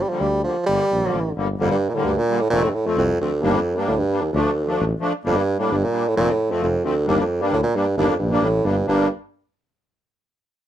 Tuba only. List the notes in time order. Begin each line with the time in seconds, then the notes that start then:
0.20 D2
0.67 G1
0.91 A#1
1.13 A1
1.36 G1
1.59 G1
2.04 D2
2.51 F1
2.97 C2
3.42 G1
3.88 D2
4.33 D2
4.80 A1
5.25 G1
5.70 G1
6.16 F1
6.61 F1
7.06 G1
7.52 D2
7.97 G1
8.20 A#1
8.42 A1
8.64 G1
8.87 G1